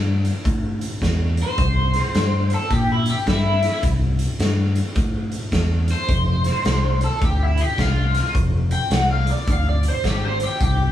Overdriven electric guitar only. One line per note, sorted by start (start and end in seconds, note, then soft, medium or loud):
1.43 2.50 C5 loud
2.54 2.71 A4 medium
2.72 2.90 G4 loud
2.92 3.09 E4 medium
3.10 3.27 G4 medium
3.29 3.83 E4 medium
5.92 7.01 C5 loud
7.04 7.22 A4 medium
7.24 7.43 G4 medium
7.43 7.61 E4 medium
7.61 7.79 G4 medium
7.79 8.34 F4 loud
8.72 8.93 G5 loud
8.93 9.10 F#5 medium
9.11 9.29 F5 medium
9.31 9.51 D5 medium
9.51 9.68 F5 medium
9.69 9.86 D5 medium
9.88 10.05 C5 loud
10.06 10.24 G4 medium
10.25 10.42 C5 loud
10.43 10.61 G4 medium
10.63 10.92 G4 loud